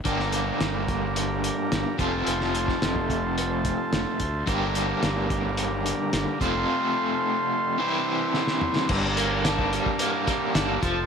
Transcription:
<<
  \new Staff \with { instrumentName = "Transistor combo organ" } { \time 4/4 \key g \dorian \tempo 4 = 109 << { bes''2.~ bes''8 a''8~ | a''1 | bes''2.~ bes''8 c'''8~ | c'''1 |
bes''2.~ bes''8 a''8 | } \\ { <g' bes' d''>2.~ <g' bes' d''>8 <f' a' c''>8~ | <f' a' c''>1 | <g' bes' d''>2.~ <g' bes' d''>8 <a' c'' f''>8~ | <a' c'' f''>2 <g' c'' e''>2 |
<g' bes' d''>2.~ <g' bes' d''>8 <f' a' c''>8 | } >> }
  \new Staff \with { instrumentName = "Overdriven electric guitar" } { \clef bass \time 4/4 \key g \dorian <g, d g bes d' g'>2.~ <g, d g bes d' g'>8 <f, c f a c' f'>8~ | <f, c f a c' f'>2.~ <f, c f a c' f'>8 r8 | <g, d g bes d' g'>2.~ <g, d g bes d' g'>8 <f, c f a c' f'>8~ | <f, c f a c' f'>2 <c e g c' e'>2 |
g,8 bes8 d'8 g8 bes8 g8 d'8 f8 | }
  \new Staff \with { instrumentName = "Fingered electric bass" } { \clef bass \time 4/4 \key g \dorian g,,4 g,,2 g,,16 r16 f,,8 | f,,4 f,,2 f,,16 r16 d,8 | g,,4 g,,2 g,,16 r16 f,,8 | r1 |
g,,2 r4 g,,8 f,,8 | }
  \new DrumStaff \with { instrumentName = "Drums" } \drummode { \time 4/4 <hh bd>16 sn16 hh8 <hh sn>8 <hh bd>8 hh8 hh8 <hh sn>8 <hh bd>8 | hh16 sn16 hh16 <bd sn>16 <hh sn>16 bd16 <hh bd>8 hh8 <hh bd>8 <hh sn>8 <hh bd>8 | <hh bd>8 hh8 <hh sn>8 <hh bd>8 hh8 hh8 <hh sn>8 <hh bd>8 | r4 r4 r4 sn16 sn16 toml16 sn16 |
<cymc bd>8 hh8 <hh sn>16 bd16 hh16 bd16 hh8 <hh bd>8 <hh sn>8 <hh bd>8 | }
>>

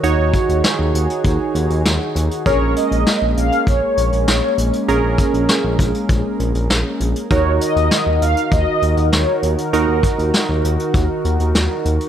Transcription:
<<
  \new Staff \with { instrumentName = "Analog polysynth" } { \time 4/4 \key ees \dorian \tempo 4 = 99 r1 | des''8 ees''4 f''8 des''4 des''8. r16 | r1 | des''8 ees''4 f''8 ees''4 des''8. r16 |
r1 | }
  \new Staff \with { instrumentName = "Synth keys" } { \time 4/4 \key ees \dorian <ees' ges' des''>1 | <des' aes' bes'>1 | <des' aes' bes'>1 | <ees' ges' bes'>1 |
<ees' ges' bes'>1 | }
  \new Staff \with { instrumentName = "Analog synth pad" } { \time 4/4 \key ees \dorian <ees ees' ges' aes'>1 | <aes bes des'>1~ | <aes bes des'>1 | <ees ees' ges' bes'>1~ |
<ees ees' ges' bes'>1 | }
  \new Staff \with { instrumentName = "Analog synth bass" } { \clef bass \time 4/4 \key ees \dorian ees,16 ees,16 r16 ees,16 r16 ees,16 ees,16 r16 ees,16 r16 ees,16 ees,16 ees,16 r16 ees,16 r16 | bes,,16 bes,,16 r16 bes,,16 r16 bes,,16 bes,,16 r16 bes,,16 r16 bes,,16 bes,,16 bes,,16 r16 bes,,16 r16 | bes,,16 bes,,16 r16 bes,,16 r16 bes,,16 bes,,16 r16 bes,,16 r16 bes,,16 bes,,16 bes,,16 r16 bes,,16 r16 | ees,16 ees,16 r16 ees,16 r16 ees,16 ees,16 r16 ees,16 r16 ees,16 ees,16 r8 ees,16 r16 |
ees,16 ees,16 r16 ees,16 r16 ees,16 ees,16 r16 ees,16 r16 ees,16 ees,16 ees,16 r16 ees,16 r16 | }
  \new DrumStaff \with { instrumentName = "Drums" } \drummode { \time 4/4 hh8 <hh bd>16 hh16 <hh sn>8 hh16 hh16 <hh bd>8 hh16 hh16 <hh sn>8 hh16 hh16 | <hh bd>8 hh16 hh16 <hh sn>8 hh16 hh16 <hh bd>8 hh16 hh16 <hh sn>8 hh16 hh16 | hh8 <hh bd>16 hh16 <hh sn>8 <hh bd>16 hh16 <hh bd>8 hh16 hh16 <hh sn>8 hh16 hh16 | <hh bd>8 hh16 hh16 <hh sn>8 hh16 hh16 <hh bd>8 hh16 hh16 <hh sn>8 hh16 hh16 |
hh8 <hh bd>16 hh16 <hh sn>8 hh16 hh16 <hh bd>8 hh16 hh16 <hh sn>8 hh16 hh16 | }
>>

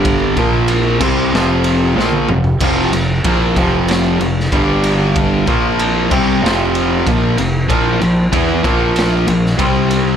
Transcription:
<<
  \new Staff \with { instrumentName = "Distorted electric guitar" } { \clef bass \time 4/4 \key f \major \tempo 4 = 94 <g, d g>8 <bes, f bes>4 <c g c'>8 <f, c f>4 <bes, f bes>8 <f, c>8 | <f, c f>8 <f, c>8 <bes, f bes>8 <f, c f>4 <f, c>8 <g, d g>4~ | <g, d g>8 <bes, f bes>4 <c g c'>8 <f, c f>4 <bes, f bes>8 <f, c>8 | <bes, f bes>8 <bes, f>8 <e b e'>8 <bes, f bes>4 <bes, f>8 <c g c'>4 | }
  \new Staff \with { instrumentName = "Picked electric bass" } { \clef bass \time 4/4 \key f \major g,,8 bes,,4 c,8 f,,4 bes,,8 f,,8 | f,,8 f,,8 bes,,8 f,,4 f,,8 g,,4~ | g,,8 bes,,4 c,8 f,,4 bes,,8 f,,8 | bes,,8 bes,,8 e,8 bes,,4 bes,,8 c,4 | }
  \new DrumStaff \with { instrumentName = "Drums" } \drummode { \time 4/4 <bd cymr>8 <bd cymr>8 cymr8 <cymc bd>8 sn8 cymr8 sn16 tommh16 toml16 tomfh16 | <cymc bd cymr>8 cymr8 <bd cymr>8 <bd cymr>8 <cymr sn>8 cymr16 sn16 <bd cymr>8 cymr8 | <bd cymr>8 <bd cymr>8 cymr8 <cymc bd>8 sn8 cymr8 <bd cymr>8 cymr8 | <bd cymr>8 cymr8 <bd cymr>8 <bd cymr>8 <cymr sn>8 cymr16 sn16 <bd cymr>8 cymr8 | }
>>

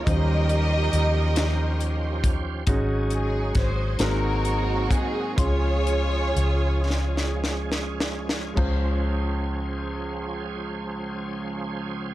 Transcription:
<<
  \new Staff \with { instrumentName = "String section" } { \time 6/8 \key des \major \tempo 4. = 42 << { ees''2~ ees''8 r8 | r8 aes'8 c''8 bes'4 aes'8 | des''2 r4 | r2. | } \\ { <g' bes'>2~ <g' bes'>8 r8 | r4. <ees' ges'>4. | <f' aes'>2 r4 | r2. | } >> }
  \new Staff \with { instrumentName = "Grand piano" } { \time 6/8 \key des \major <ges g des' f' c''>2. | <aes des' ees' ges'>4. <aes c' ges' bes'>4. | <aes des' f' c'''>2. | <aes des' f' c''>2. | }
  \new Staff \with { instrumentName = "Grand piano" } { \clef bass \time 6/8 \key des \major ees4. r4. | aes,4. aes,4. | des4. r4. | des,2. | }
  \new Staff \with { instrumentName = "Tonewheel organ" } { \time 6/8 \key des \major << { g'2. | aes'4. aes'4.~ | aes'2. | <f des' aes' c''>2. | } \\ { <des' c''>2. | <des' ees'>4. <bes c'>4. | <aes des'>2. | r2. | } >> }
  \new Staff \with { instrumentName = "Tonewheel organ" } { \clef bass \time 6/8 \key des \major f2. | ges2. | f2. | r2. | }
  \new Staff \with { instrumentName = "Fingered electric bass" } { \clef bass \time 6/8 \key des \major ees,4 ees,2 | aes,,4 aes,,8 aes,,4 r8 | des,4 des,2 | des,2. | }
  \new DrumStaff \with { instrumentName = "Drums" } \drummode { \time 6/8 <hh bd>8 hh8 hh8 <hh sn>8 hh8 <hh bd>8 | <hh bd>8 hh8 <hh bd sn>8 <hh sn>8 hh8 <hh bd>8 | <hh bd>8 hh8 hh8 sn16 sn16 sn16 sn16 sn16 sn16 | <cymc bd>4. r4. | }
>>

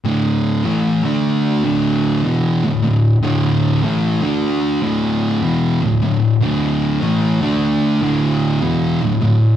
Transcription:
<<
  \new Staff \with { instrumentName = "Distorted electric guitar" } { \clef bass \time 4/4 \key c \mixolydian \tempo 4 = 75 <d, a, d>8. <a, e a>8 <d a d'>8. <d, a, d>8. <e, b, e>8 <d, a,>16 <d, a,>8 | <d, a, d>8. <a, e a>8 <d a d'>8. <d, a, d>8. <e, b, e>8 <d, a,>16 <d, a,>8 | <d, a, d>8. <a, e a>8 <d a d'>8. <d, a, d>8. <e, b, e>8 <d, a,>16 <d, a,>8 | }
  \new Staff \with { instrumentName = "Distorted electric guitar" } { \clef bass \time 4/4 \key c \mixolydian <d, a, d>8. <a, e a>8 <d a d'>8. <d, a, d>8. <e, b, e>8 <d, a,>16 <d, a,>8 | <d, a, d>8. <a, e a>8 <d a d'>8. <d, a, d>8. <e, b, e>8 <d, a,>16 <d, a,>8 | <d, a, d>8. <a, e a>8 <d a d'>8. <d, a, d>8. <e, b, e>8 <d, a,>16 <d, a,>8 | }
>>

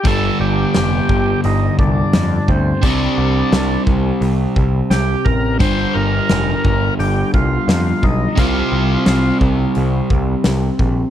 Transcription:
<<
  \new Staff \with { instrumentName = "Tonewheel organ" } { \time 4/4 \key g \minor \tempo 4 = 87 a'8 g'4. ees'8 d'4 c'8 | d'4. r4. g'8 bes'8 | c''8 bes'4. g'8 f'4 ees'8 | f'4. r2 r8 | }
  \new Staff \with { instrumentName = "Overdriven electric guitar" } { \clef bass \time 4/4 \key g \minor <g, d g>1 | <c g c'>1 | <g, d g>1 | <c g c'>1 | }
  \new Staff \with { instrumentName = "Picked electric bass" } { \clef bass \time 4/4 \key g \minor g,,8 g,,8 f,,8 g,,8 g,,8 c,8 f,8 d,8 | c,8 c,8 c,8 c,8 c,8 c,8 c,8 a,,8 | g,,8 g,,8 f,,8 g,,8 g,,8 c,8 f,8 b,,8 | c,8 c,8 c,8 c,8 c,8 c,8 c,8 bes,,8 | }
  \new DrumStaff \with { instrumentName = "Drums" } \drummode { \time 4/4 <hho bd>4 <hho sn>8 bd8 hho8 bd8 <hho sn>8 bd8 | <hho bd>4 <hho sn>8 bd8 hho8 bd8 <hho sn>8 bd8 | <hho bd>4 <hho sn>8 bd8 hho8 bd8 <hho sn>8 bd8 | <hho bd>4 <hho sn>8 bd8 hho8 bd8 <hho sn>8 bd8 | }
>>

